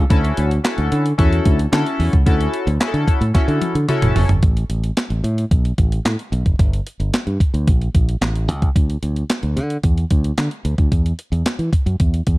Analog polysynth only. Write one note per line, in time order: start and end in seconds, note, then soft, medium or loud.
0.10 0.50 C#4 medium
0.10 0.50 E4 medium
0.10 0.50 F#4 medium
0.10 0.50 A4 loud
0.64 1.04 C#4 medium
0.64 1.04 E4 medium
0.64 1.04 F#4 medium
0.64 1.05 A4 medium
1.18 1.58 C#4 medium
1.18 1.58 E4 medium
1.18 1.59 F#4 medium
1.18 1.59 A4 loud
1.72 2.12 C#4 medium
1.72 2.13 E4 medium
1.72 2.13 F#4 medium
1.72 2.13 A4 loud
2.26 2.66 C#4 medium
2.26 2.66 E4 medium
2.26 2.67 F#4 medium
2.26 2.67 A4 loud
2.80 3.20 C#4 medium
2.80 3.21 E4 medium
2.80 3.21 F#4 medium
2.80 2.87 G#4 medium
2.88 3.24 A4 loud
3.34 3.74 C#4 medium
3.34 3.75 E4 medium
3.34 3.75 F#4 medium
3.34 3.75 A4 medium
3.88 4.29 C#4 loud
3.88 4.29 E4 medium
3.88 4.29 F#4 medium
3.88 4.29 A4 loud